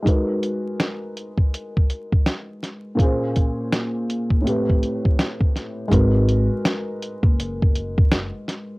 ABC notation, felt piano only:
X:1
M:4/4
L:1/8
Q:"Swing 16ths" 1/4=82
K:A#phr
V:1 name="Felt piano"
[G,DFAB]8 | [A,,A,CG^B]4 [=A,,=A,=C=G=B]4 | [G,DFAB]8 |]